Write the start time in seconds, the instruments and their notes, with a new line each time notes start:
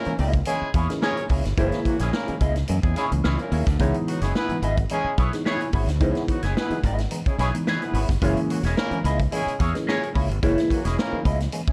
Already playing: horn section A#3 C#4 E4 A#4
0.05 tine electric piano E3 G#3 A#3 C#4, muted clean electric guitar stroke, muted fingered electric bass stroke, closed hi-hat
0.18 fingered electric bass C#2, clean electric guitar A#3 E4 G#4 D#5, tine electric piano A#3 C#4, open hi-hat
0.33 muted clean electric guitar stroke, kick, closed hi-hat
0.45 tine electric piano E3 G#3 A#3 C#4, horn section G#3 C#4 E4 G#4, muted clean electric guitar stroke, closed hi-hat
0.62 tine electric piano A#3 D#4, muted fingered electric bass stroke, muted clean electric guitar stroke
0.74 fingered electric bass E2, clean electric guitar A#3 E4 G#4 C#5, kick, closed hi-hat
0.89 tine electric piano E3 G#3 A#3 C#4, muted clean electric guitar stroke, snare, closed hi-hat
1.02 clean electric guitar A#3 E4 G#4 C#5, horn section C#4 G#4 A#4 C#5, snare
1.17 muted clean electric guitar stroke, closed hi-hat
1.29 fingered electric bass C#2, clean electric guitar A#3 E4 G#4 C#5, tine electric piano A#3 C#4, kick, open hi-hat
1.45 fingered electric bass G1, muted clean electric guitar stroke, snare, closed hi-hat
1.57 fingered electric bass F#1, tine electric piano E3 G#3 A#3 E4, clean electric guitar A#3 E4 G#4 C#5, kick, closed hi-hat
1.72 snare, closed hi-hat
1.85 horn section F#3 A#3 C#4 F#4, muted clean electric guitar stroke, kick, closed hi-hat
1.99 fingered electric bass A#1, horn section G#3 C#4 E4 G#4, clean electric guitar A#3 E4 G#4 C#5, snare, closed hi-hat
2.12 horn section A#3 C#4 E4 A#4, muted clean electric guitar stroke, snare
2.27 tine electric piano E3 G#3 A#3 C#4, muted clean electric guitar stroke, muted fingered electric bass stroke, closed hi-hat
2.40 fingered electric bass C#2, clean electric guitar A#3 E4 G#4 D#5, kick, closed hi-hat
2.56 muted clean electric guitar stroke, snare, closed hi-hat
2.68 fingered electric bass F#2, tine electric piano E3 G#3 A#3 C#4, muted clean electric guitar stroke, closed hi-hat
2.82 fingered electric bass E2, horn section G#3 C#4 E4 G#4, tine electric piano A#3 C#4, muted clean electric guitar stroke, kick, closed hi-hat
2.96 horn section G#3 C#4 E4 G#4, clean electric guitar A#3 E4 G#4 C#5, snare, closed hi-hat
3.11 fingered electric bass C#2, tine electric piano E3 G#3 A#3 C#4, muted clean electric guitar stroke, closed hi-hat
3.24 fingered electric bass C#2, clean electric guitar A#3 E4 G#4 C#5, snare
3.39 horn section A#3 C#4 E4 A#4, muted clean electric guitar stroke, closed hi-hat
3.51 fingered electric bass D#2, clean electric guitar A#3 E4 G#4 C#5, tine electric piano A#3 C#4, open hi-hat
3.66 fingered electric bass D2, muted clean electric guitar stroke, kick, snare, closed hi-hat
3.79 fingered electric bass C#2, tine electric piano E3 G#3 B3 D#4, clean electric guitar B3 E4 G#4 C#5, kick, closed hi-hat
3.94 closed hi-hat
4.07 horn section F#3 B3 D#4 F#4, muted clean electric guitar stroke, closed hi-hat
4.21 fingered electric bass F#1, horn section G#3 C#4 E4 G#4, clean electric guitar B3 E4 G#4 C#5, snare, closed hi-hat
4.35 horn section B3 E4 G#4 B4, muted clean electric guitar stroke, snare
4.49 tine electric piano E3 G#3 B3 D#4, muted fingered electric bass stroke, muted clean electric guitar stroke, closed hi-hat
4.62 fingered electric bass G#1, clean electric guitar B3 E4 G#4 D#5, closed hi-hat
4.77 muted clean electric guitar stroke, kick, closed hi-hat
4.89 tine electric piano E3 G#3 B3 D#4, horn section G#3 C#4 E4 G#4, muted clean electric guitar stroke, closed hi-hat
5.04 muted fingered electric bass stroke, muted clean electric guitar stroke
5.18 fingered electric bass B1, clean electric guitar B3 E4 G#4 C#5, kick, closed hi-hat
5.33 tine electric piano E3 G#3 B3 D#4, muted clean electric guitar stroke, snare, closed hi-hat
5.45 clean electric guitar B3 E4 G#4 C#5, horn section C#4 E4 G#4 C#5, snare
5.60 muted clean electric guitar stroke, closed hi-hat
5.73 fingered electric bass G#1, clean electric guitar B3 E4 G#4 C#5, tine electric piano B3 D#4, kick, open hi-hat
5.87 fingered electric bass D2, muted clean electric guitar stroke, snare, closed hi-hat
6.01 fingered electric bass C#2, tine electric piano E3 G#3 B3 D#4, clean electric guitar B3 E4 G#4 C#5, kick, closed hi-hat
6.15 snare, closed hi-hat
6.28 horn section F#3 B3 D#4 F#4, muted clean electric guitar stroke, kick, closed hi-hat
6.42 fingered electric bass F#1, horn section G#3 C#4 E4 G#4, clean electric guitar B3 E4 G#4 C#5, snare, closed hi-hat
6.57 horn section B3 E4 G#4 B4, muted clean electric guitar stroke, snare
6.70 tine electric piano E3 G#3 B3 D#4, muted fingered electric bass stroke, muted clean electric guitar stroke, closed hi-hat
6.83 fingered electric bass G#1, clean electric guitar B3 E4 G#4 D#5, kick, closed hi-hat
6.98 muted clean electric guitar stroke, snare, closed hi-hat
7.11 tine electric piano E3 G#3 B3 D#4, muted clean electric guitar stroke, closed hi-hat
7.26 horn section G#3 C#4 E4 G#4, muted fingered electric bass stroke, muted clean electric guitar stroke, kick, closed hi-hat
7.38 fingered electric bass B1, horn section G#3 C#4 E4 G#4, clean electric guitar B3 E4 G#4 C#5, snare, closed hi-hat
7.54 tine electric piano E3 G#3 B3 D#4, muted clean electric guitar stroke, closed hi-hat
7.67 clean electric guitar B3 E4 G#4 C#5, snare
7.81 horn section B3 E4 G#4 B4, muted clean electric guitar stroke, closed hi-hat
7.94 fingered electric bass G#1, clean electric guitar B3 E4 G#4 C#5, tine electric piano B3 D#4, open hi-hat
8.09 fingered electric bass G1, muted clean electric guitar stroke, kick, snare, closed hi-hat
8.22 fingered electric bass F#1, tine electric piano E3 G#3 A#3 C#4, clean electric guitar A#3 E4 G#4 C#5, kick, closed hi-hat
8.37 closed hi-hat
8.49 horn section F#3 A#3 C#4 F#4, muted clean electric guitar stroke, closed hi-hat
8.63 fingered electric bass E1, horn section G#3 C#4 E4 G#4, clean electric guitar A#3 E4 G#4 C#5, snare, closed hi-hat
8.76 horn section A#3 C#4 E4 A#4, muted clean electric guitar stroke, snare
8.91 tine electric piano E3 G#3 A#3 C#4, muted fingered electric bass stroke, muted clean electric guitar stroke, closed hi-hat
9.04 fingered electric bass C#2, clean electric guitar A#3 E4 G#4 D#5, closed hi-hat
9.20 kick, closed hi-hat
9.32 tine electric piano E3 G#3 A#3 C#4, horn section G#3 C#4 E4 G#4, muted clean electric guitar stroke, closed hi-hat
9.47 tine electric piano C#4, muted fingered electric bass stroke, muted clean electric guitar stroke, closed hi-hat
9.59 fingered electric bass E2, clean electric guitar A#3 E4 G#4 C#5, kick, closed hi-hat
9.74 tine electric piano E3 G#3 A#3 C#4, muted clean electric guitar stroke, snare, closed hi-hat
9.87 clean electric guitar A#3 E4 G#4 C#5, horn section C#4 G#4 A#4 C#5, snare
10.01 muted clean electric guitar stroke, closed hi-hat
10.14 fingered electric bass C#2, clean electric guitar A#3 E4 G#4 C#5, tine electric piano A#3 C#4, kick, open hi-hat
10.29 fingered electric bass G1, muted clean electric guitar stroke, closed hi-hat
10.43 fingered electric bass F#1, tine electric piano E3 G#3 A#3 E4, clean electric guitar A#3 E4 G#4 C#5, kick, closed hi-hat
10.58 snare, closed hi-hat
10.70 horn section F#3 A#3 C#4 F#4, muted clean electric guitar stroke, kick, closed hi-hat
10.84 fingered electric bass E1, horn section G#3 C#4 E4 G#4, clean electric guitar A#3 E4 G#4 C#5, snare, closed hi-hat
10.98 horn section A#3 C#4 E4 A#4, muted clean electric guitar stroke, snare
11.12 tine electric piano E3 G#3 A#3 D#4, muted clean electric guitar stroke, muted fingered electric bass stroke
11.24 fingered electric bass C#2, clean electric guitar A#3 E4 G#4 D#5, tine electric piano A#3 C#4, kick, closed hi-hat
11.40 muted clean electric guitar stroke, snare, closed hi-hat
11.52 tine electric piano E3 G#3 A#3 C#4, muted clean electric guitar stroke, closed hi-hat
11.67 horn section G#3 C#4 E4 G#4, tine electric piano A#3 C#4, muted fingered electric bass stroke, muted clean electric guitar stroke, kick